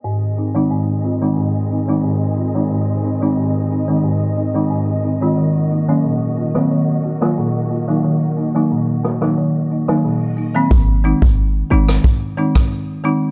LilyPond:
<<
  \new Staff \with { instrumentName = "String section" } { \time 4/4 \key aes \mixolydian \tempo 4 = 90 << { <ees ees''>1~ | <ees ees''>1~ | <ees ees''>1~ | <ees ees''>1 |
r1 | } \\ { <c' aes'>1~ | <c' aes'>1 | <bes ges'>1~ | <bes ges'>1 |
r1 | } >> }
  \new Staff \with { instrumentName = "Marimba" } { \time 4/4 \key aes \mixolydian << { r8 <c' ees'>16 <ees aes c' ees'>16 r8 <c' f'>16 <ees aes c' ees'>16 r8 <c' ees'>16 <ees aes c' ees'>16 r8 <c' f'>16 <ees aes c' ees'>16 | r8 <c' ees'>16 <ees aes c' ees'>16 r8 <c' ees'>16 <ees aes c' ees'>16 r8 <c' ees'>16 <ees aes c' ees'>16 r8 <c' ees'>16 <ees aes c' f'>16 | r8 <bes ees'>16 <ees ges bes des'>16 r8 <bes f'>16 <ees ges bes c'>16 r8 <bes ges'>16 <ees ges bes f'>16 r8 <bes f'>16 <ees ges bes ees'>16 | r8 <bes ees'>16 <ees ges bes ees'>16 r8 <bes ges'>16 <ees ges bes ees'>16 r8 <bes ees'>16 <ees ges bes ees'>16 r8 <bes ees'>16 <ees ges bes c'>16 |
r8 <ees aes c' ees'>16 r8. <ees aes c' ees'>16 r8. <ees aes c' ees'>16 r8. <ees aes c' ees'>16 r16 | } \\ { aes,4 aes,4 aes,4 aes,4 | aes,4 aes,4 aes,4 aes,4 | ees4 bes,4 ees4 bes,4 | ees4 bes,4 ees4 bes,4 |
r1 | } >> }
  \new Staff \with { instrumentName = "808-style bass" } { \clef bass \time 4/4 \key aes \mixolydian r1 | r1 | r1 | r1 |
aes,,8. aes,,8. aes,,8 r2 | }
  \new DrumStaff \with { instrumentName = "Drums" } \drummode { \time 4/4 r4 r4 r4 r4 | r4 r4 r4 r4 | r4 r8. ss16 r8. ss16 r4 | r4 r8 ss16 ss16 r8. ss16 r4 |
bd8. bd16 r8. ss16 bd8. <bd ss>16 r4 | }
>>